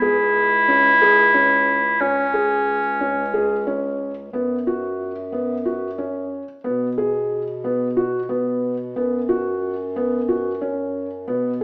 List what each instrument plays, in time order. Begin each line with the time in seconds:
Already playing: bass clarinet C#2, clarinet E4
0.02 felt piano G#4
0.68 felt piano C#4
1.02 felt piano G#4
1.34 felt piano C#4
2.01 bass clarinet C#2, felt piano C#4, clarinet C#4
2.34 felt piano G#4
3.01 felt piano C#4
3.34 felt piano G#4
3.67 felt piano C#4
4.32 bass clarinet F#2, felt piano B3
4.67 felt piano F#4
5.32 felt piano B3
5.66 felt piano F#4
5.98 felt piano C#4
6.63 bass clarinet B2, felt piano B3
6.98 felt piano G#4
7.64 felt piano B3
7.97 felt piano F#4
8.29 felt piano B3
8.96 bass clarinet F#2, felt piano B3
9.29 felt piano F#4
9.96 felt piano B3
10.29 felt piano F#4
10.61 felt piano C#4
11.28 bass clarinet B2, felt piano B3